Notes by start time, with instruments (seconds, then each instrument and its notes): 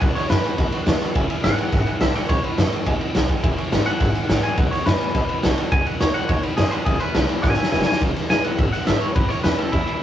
0.01 upright bass B1, steel-string acoustic guitar B2, honky-tonk piano D#5 F#5 B5, clean electric guitar F#5, kick, ride
0.15 clean electric guitar C#5, honky-tonk piano D#5 F#5, snare, ride
0.29 upright bass F#2, steel-string acoustic guitar D#3 A3 B3 F#4, clean electric guitar B4, honky-tonk piano D#5 F#5, snare, ride
0.44 steel-string acoustic guitar B3 F#4, honky-tonk piano D#5 F#5 G#5, ride
0.58 upright bass D#2, steel-string acoustic guitar F#2, honky-tonk piano D#5 F#5 B5, kick, snare, ride
0.72 honky-tonk piano D#5 F#5 C#6, muted upright bass stroke, ride
0.86 upright bass D#2, steel-string acoustic guitar D#3 A3 B3 F#4, honky-tonk piano D#5 F#5 C#6, snare, ride
1.00 steel-string acoustic guitar B3 F#4, honky-tonk piano D#5 F#5 B5, muted upright bass stroke, snare, ride
1.15 upright bass E1, steel-string acoustic guitar E2, honky-tonk piano E5 G#5 B5, kick, ride
1.30 honky-tonk piano E5 G#5 B5, muted upright bass stroke, ride
1.43 upright bass G#1, steel-string acoustic guitar E3 G#3 B3 E4, honky-tonk piano E5 G#5 B5, clean electric guitar F#5, snare, ride
1.58 steel-string acoustic guitar B3 E4, honky-tonk piano E5 G#5 B5, muted upright bass stroke, ride
1.72 upright bass G#1, steel-string acoustic guitar G#2, honky-tonk piano E5 G#5 B5, kick, snare, ride
1.86 honky-tonk piano E5 G#5 B5, ride
2.01 upright bass B1, steel-string acoustic guitar A2, honky-tonk piano E5 G#5 B5, clean electric guitar E5, snare, ride
2.15 honky-tonk piano E5 G#5 B5, clean electric guitar F#5, muted upright bass stroke, snare, ride
2.29 upright bass B1, steel-string acoustic guitar B2, clean electric guitar C#5, honky-tonk piano D#5 F#5 B5, kick, ride
2.44 clean electric guitar B4, honky-tonk piano D#5 F#5 C#6, muted upright bass stroke, ride
2.57 upright bass F#2, steel-string acoustic guitar D#3 A3 B3 F#4, clean electric guitar A4, honky-tonk piano D#5 F#5 B5, snare, ride
2.72 honky-tonk piano D#5 F#5 A5, ride
2.85 upright bass D#2, steel-string acoustic guitar G#2, honky-tonk piano D#5 F#5 G#5, kick, ride
3.00 honky-tonk piano D#5 F#5 B5, muted upright bass stroke, ride
3.15 upright bass B1, steel-string acoustic guitar F#2, honky-tonk piano D#5 F#5 B5, snare, ride
3.28 honky-tonk piano D#5 F#5 G#5 B5, kick, ride
3.43 upright bass E1, steel-string acoustic guitar E2, honky-tonk piano E5 G#5 B5, kick, ride
3.57 honky-tonk piano E5 G#5 C#6, muted upright bass stroke, ride
3.71 upright bass G#1, steel-string acoustic guitar E3 G#3 B3 E4, honky-tonk piano E5 G#5 B5, snare, ride
3.86 steel-string acoustic guitar B3 E4, honky-tonk piano E5 G#5 B5, clean electric guitar F#5, muted upright bass stroke, ride
4.00 upright bass G#1, steel-string acoustic guitar G#2, honky-tonk piano E5 G#5 B5, kick, snare, ride
4.14 honky-tonk piano E5 G#5 B5, muted upright bass stroke, ride
4.29 upright bass A1, steel-string acoustic guitar A2, honky-tonk piano E5 G#5 B5, snare, ride
4.43 honky-tonk piano E5 G#5 B5, clean electric guitar G#5, muted upright bass stroke, ride
4.57 upright bass B1, steel-string acoustic guitar B2, honky-tonk piano D#5 F#5 B5, clean electric guitar F#5, kick, ride
4.71 clean electric guitar C#5, honky-tonk piano F#5, muted upright bass stroke, snare, ride
4.86 upright bass F#2, steel-string acoustic guitar D#3 A3 B3 F#4, clean electric guitar B4, honky-tonk piano F#5, snare, ride
5.00 steel-string acoustic guitar B3 F#4, honky-tonk piano D#5 F#5 G#5, muted upright bass stroke, ride
5.15 upright bass D#2, steel-string acoustic guitar F#2, honky-tonk piano D#5 F#5 B5, kick, snare, ride
5.29 honky-tonk piano D#5 F#5 B5, muted upright bass stroke, ride
5.43 upright bass B1, steel-string acoustic guitar D#3 A3 B3 F#4, honky-tonk piano D#5 F#5 B5, snare, ride
5.58 steel-string acoustic guitar B3 F#4, honky-tonk piano D#5 F#5 B5, muted upright bass stroke, ride
5.71 upright bass B1, steel-string acoustic guitar B2, honky-tonk piano D#5 F#5 A5, clean electric guitar G#5, kick, ride
5.86 honky-tonk piano D#5 F#5 B5, clean electric guitar F#5, muted upright bass stroke, ride
6.00 upright bass D#2, steel-string acoustic guitar D#3 A3 B3 F#4, clean electric guitar C#5, honky-tonk piano F#5 B5, snare, ride
6.14 steel-string acoustic guitar B3 F#4, honky-tonk piano D#5 F#5 B5, clean electric guitar F#5, muted upright bass stroke, ride
6.28 upright bass D#2, steel-string acoustic guitar G#2, clean electric guitar C#5, honky-tonk piano D#5 F#5 B5, kick, ride
6.43 clean electric guitar B4, honky-tonk piano D#5 F#5 B5, muted upright bass stroke, ride
6.57 steel-string acoustic guitar F#2, upright bass F#2, clean electric guitar G#4, honky-tonk piano F#5 B5, snare, ride
6.71 clean electric guitar B4, honky-tonk piano D#5 F#5 B5, ride
6.85 upright bass E1, steel-string acoustic guitar E2, clean electric guitar G#4, honky-tonk piano E5 G#5 B5, kick, ride
7.00 clean electric guitar B4, honky-tonk piano E5 G#5 C#6, muted upright bass stroke, ride
7.15 upright bass B1, steel-string acoustic guitar E3 G#3 B3 E4, honky-tonk piano E5 G#5 B5, snare, ride
7.29 steel-string acoustic guitar B3 E4, honky-tonk piano E5 G#5 B5, ride
7.42 upright bass G#1, steel-string acoustic guitar B2, clean electric guitar E5 G#5, honky-tonk piano E5 G#5 B5, kick, snare
7.53 clean electric guitar E5 G#5, snare
7.58 honky-tonk piano E5 G#5 C#6, muted upright bass stroke
7.63 snare
7.72 upright bass E1, steel-string acoustic guitar E3 G#3 B3 E4, clean electric guitar E5 G#5, honky-tonk piano E5 G#5 B5, snare
7.82 snare
7.86 steel-string acoustic guitar B3 E4, honky-tonk piano E5 G#5 C#6, clean electric guitar G#5, muted upright bass stroke
7.92 snare
8.01 upright bass E1, steel-string acoustic guitar E2, kick, ride
8.16 muted upright bass stroke, snare, ride
8.29 upright bass G#1, steel-string acoustic guitar E3 G#3 B3 E4, clean electric guitar G#5, snare, ride
8.44 upright bass B1, steel-string acoustic guitar B3 E4, clean electric guitar F#5, ride
8.58 upright bass G#1, steel-string acoustic guitar B2, clean electric guitar E5, kick, ride
8.73 clean electric guitar F#5, muted upright bass stroke, snare, ride
8.87 upright bass G#1, steel-string acoustic guitar E3 G#3 B3 E4, clean electric guitar E5, snare, ride
9.01 clean electric guitar C#5, muted upright bass stroke, ride
9.15 upright bass A1, steel-string acoustic guitar A2, clean electric guitar B4, kick, ride
9.29 clean electric guitar C#5, muted upright bass stroke, snare, ride
9.43 upright bass E2, steel-string acoustic guitar E3 A3 C#4 E4, clean electric guitar B4, snare, ride
9.58 steel-string acoustic guitar C#4 E4, clean electric guitar A4, ride
9.72 steel-string acoustic guitar E2, upright bass E2, clean electric guitar E4, kick, snare, ride
9.87 muted upright bass stroke, ride